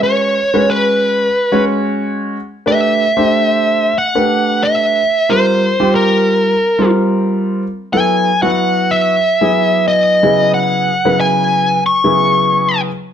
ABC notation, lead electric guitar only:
X:1
M:4/4
L:1/16
Q:1/4=91
K:C#phr
V:1 name="Lead electric guitar"
c4 B6 z6 | e8 f4 e4 | =c4 _B6 z6 | g3 f3 e6 ^d4 |
f4 g4 c'6 z2 |]